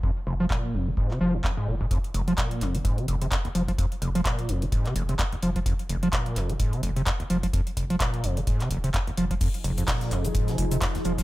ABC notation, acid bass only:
X:1
M:4/4
L:1/16
Q:"Swing 16ths" 1/4=128
K:Fm
V:1 name="Acid bass" clef=bass
F,, z F,,, F, B,,2 F,, F, A,, C, F, F,, F,, A,, B,, A,, | F,, z F,,, F, B,,2 F,, F, A,, C, F,,, C, F,, E,, F, F, | F,, z F,,, F, B,,2 F,, F, A,, C, F,,, C, F,, E,, F, F, | F,, z F,,, F, B,,2 F,, F, A,, C, F,,, C, F,, E,, F, F, |
F,, z F,,, F, B,,2 F,, F, A,, C, F,,, C, F,, E,, F, F, | F,, z F,,, F,, B,,2 F,, F, A,, C, F,,, C, F,, E,, F, F, |]